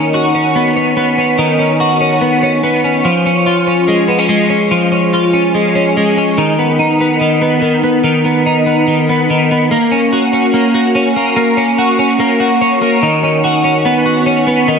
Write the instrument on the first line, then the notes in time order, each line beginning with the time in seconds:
clean electric guitar
Already playing: D#3 C#4 F#4
0.14 F#4
0.35 C#4
0.56 B3
0.76 C#4
0.97 B3
1.18 C#4
1.38 D#3
1.59 C#4
1.80 F#4
2.01 C#4
2.21 B3
2.43 C#4
2.63 B3
2.84 C#4
3.05 F3
3.26 C#4
3.46 F4
3.67 C#4
3.88 G#3
4.08 B3
4.19 C#4
4.29 G#3
4.50 C#4
4.71 F3
4.92 C#4
5.13 F4
5.33 C#4
5.55 G#3
5.75 C#4
5.97 G#3
6.17 C#4
6.38 D#3
6.59 B3
6.79 D#4
7.00 B3
7.21 D#3
7.42 B3
7.62 D#3
7.84 B3
8.04 D#3
8.25 B3
8.46 D#4
8.66 B3
8.87 D#3
9.09 B3
9.30 D#3
9.51 B3
9.71 A#3
9.91 C#4
10.13 F#4
10.33 C#4
10.54 A#3
10.74 F#4
10.95 C#4
11.16 A#3
11.36 A#3
11.57 C#4
11.79 F#4
11.99 C#4
12.20 A#3
12.40 F#4
12.61 C#4
12.82 A#3
13.03 D#3
13.23 C#4
13.44 F#4
13.64 C#4
13.85 B3
14.06 F#4
14.26 C#4
14.47 B3
14.68 D#3